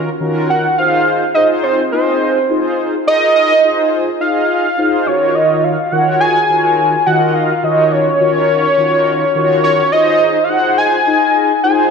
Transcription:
0.20 0.66 D#3 medium
0.20 0.67 C#4 medium
0.20 0.67 F4 medium
0.20 0.67 F#4 medium
0.20 0.67 A#4 loud
0.50 0.76 F#5 loud
0.78 1.24 D#4 medium
0.78 1.24 F4 medium
0.78 1.24 G#4 medium
0.78 1.24 C5 loud
0.78 1.31 F5 loud
1.34 1.81 D#4 medium
1.34 1.81 F4 medium
1.34 1.82 G#4 medium
1.34 1.82 C5 loud
1.34 1.47 D#5 loud
1.63 1.90 C5 medium
1.92 2.38 D#4 medium
1.92 2.38 F4 medium
1.92 2.38 G#4 medium
1.92 2.74 C5 medium
1.92 2.39 D#5 medium
2.49 2.95 D#4 medium
2.49 2.95 F4 medium
2.49 2.96 G#4 medium
2.49 2.96 C5 medium
3.06 3.52 D#4 medium
3.06 3.52 F4 medium
3.06 3.53 G#4 medium
3.06 3.53 A#4 medium
3.06 3.34 D#5 loud
3.35 3.89 D#5 loud
3.63 4.09 D#4 medium
3.63 4.10 F4 medium
3.63 4.10 G#4 medium
3.63 4.10 C5 medium
4.20 4.67 D#4 medium
4.20 4.67 F4 medium
4.20 4.67 G#4 medium
4.20 4.67 D#5 medium
4.20 5.08 F5 loud
4.78 5.07 D#4 medium
4.78 5.05 F4 medium
4.78 5.07 G#4 medium
4.78 5.07 C5 medium
5.06 5.76 D#3 medium
5.06 5.77 F4 medium
5.06 5.77 F#4 medium
5.06 5.77 A#4 medium
5.06 5.36 C#5 medium
5.06 5.77 C#5 medium
5.35 5.65 D#5 loud
5.64 5.94 F5 loud
5.92 6.38 D#3 medium
5.92 6.38 F4 medium
5.92 6.38 F#4 medium
5.92 6.38 A#4 medium
5.92 6.38 C#5 loud
5.92 6.20 F#5 loud
6.20 7.03 G#5 loud
6.49 6.95 D#3 medium
6.49 6.95 F4 medium
6.49 6.95 F#4 medium
6.49 6.96 A#4 medium
6.49 6.96 C#5 medium
7.06 7.53 D#3 medium
7.06 7.52 F4 medium
7.06 7.53 F#4 medium
7.06 7.53 A#4 medium
7.06 7.53 D#5 medium
7.06 7.36 F#5 loud
7.35 7.65 F5 medium
7.63 8.09 D#3 medium
7.63 8.10 F4 medium
7.63 8.10 F#4 medium
7.63 8.10 A#4 medium
7.63 8.10 C#5 loud
7.63 7.94 D#5 loud
7.92 9.63 C#5 loud
8.20 8.67 D#3 medium
8.20 8.67 F4 medium
8.20 8.67 F#4 medium
8.20 8.67 A#4 medium
8.20 8.67 C#5 loud
8.78 9.24 D#3 loud
8.78 9.24 F4 medium
8.78 9.24 F#4 medium
8.78 9.24 A#4 medium
8.78 9.24 C#5 loud
9.35 9.81 D#3 loud
9.35 9.81 F4 medium
9.35 9.81 F#4 medium
9.35 9.81 A#4 loud
9.35 9.81 C#5 loud
9.64 9.90 C#5 medium
9.92 10.38 D#4 medium
9.92 10.38 F4 medium
9.92 10.38 G#4 medium
9.92 10.38 C5 medium
9.92 10.45 D#5 loud
10.44 10.50 F5 medium
10.49 10.95 D#4 medium
10.49 10.95 F4 medium
10.49 10.96 G#4 medium
10.49 10.96 C5 loud
10.49 10.77 F#5 loud
10.78 11.60 G#5 loud
11.07 11.53 D#4 medium
11.07 11.53 F4 medium
11.07 11.53 G#4 medium
11.07 11.53 D#5 medium
11.63 11.90 D#4 medium
11.63 11.90 F4 medium
11.63 11.90 G#4 medium
11.63 11.90 C5 loud
11.63 11.90 G#5 loud

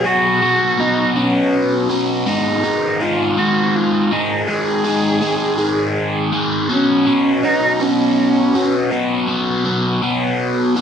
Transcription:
0.04 0.41 B2 medium
0.04 0.41 F#3 medium
0.04 0.42 B3 loud
0.04 0.81 F#4 loud
0.42 0.78 B2 loud
0.42 0.78 F#3 loud
0.42 0.79 B3 loud
0.78 1.16 B2 medium
0.78 1.15 F#3 loud
0.78 1.17 B3 loud
0.78 1.17 D#4 loud
1.16 1.89 B2 medium
1.16 1.89 F#3 loud
1.16 1.90 B3 loud
1.16 1.99 C#4 loud
1.89 2.26 B2 medium
1.89 2.24 F#3 loud
1.89 5.40 B3 medium
2.26 2.62 G#2 medium
2.26 2.63 D#3 medium
2.26 2.64 G#3 loud
2.26 3.02 D#4 loud
2.63 2.99 G#2 medium
2.63 3.00 D#3 loud
2.63 3.01 G#3 loud
3.00 3.36 G#2 medium
3.00 3.37 D#3 medium
3.00 3.37 G#3 loud
3.00 3.40 F4 loud
3.37 4.10 G#2 loud
3.37 4.11 D#3 medium
3.37 4.12 G#3 loud
3.37 3.77 F#4 loud
3.75 4.13 F4 medium
4.11 4.46 G#2 medium
4.11 4.48 D#3 loud
4.11 4.48 G#3 loud
4.11 4.48 D#4 medium
4.48 4.84 G#2 medium
4.48 4.84 D#3 loud
4.48 4.84 G#3 loud
4.48 6.29 G#4 loud
4.85 5.20 G#2 medium
4.85 5.21 D#3 loud
4.85 5.21 G#3 loud
5.21 5.56 G#2 medium
5.21 5.57 D#3 loud
5.21 5.58 G#3 loud
5.58 6.31 G#2 loud
5.58 6.31 D#3 loud
5.58 6.32 G#3 loud
6.32 6.67 G#2 medium
6.32 6.67 D#3 medium
6.32 6.67 G#3 loud
6.69 7.06 B2 loud
6.69 7.07 F#3 loud
6.69 7.07 B3 loud
6.69 7.45 C#4 loud
7.06 7.43 B2 medium
7.06 7.43 F#3 loud
7.06 7.44 B3 loud
7.43 7.79 B2 medium
7.43 7.80 F#3 loud
7.43 7.80 B3 loud
7.43 7.83 D#4 loud
7.80 8.53 B2 loud
7.80 8.54 F#3 loud
7.80 8.54 B3 loud
7.80 8.92 C#4 loud
8.54 8.90 B2 medium
8.54 8.90 F#3 medium
8.54 8.91 B3 loud
8.91 9.26 B2 loud
8.91 9.27 F#3 loud
8.91 10.39 B3 loud
8.91 9.28 B3 loud
9.28 9.64 B2 loud
9.28 9.64 F#3 loud
9.28 9.65 B3 loud
9.65 10.01 B2 medium
9.65 10.01 F#3 medium
9.65 10.02 B3 loud
10.02 10.75 B2 loud
10.02 10.76 F#3 loud
10.02 10.76 B3 loud
10.76 10.81 B2 medium
10.76 10.81 F#3 medium
10.76 10.81 B3 medium

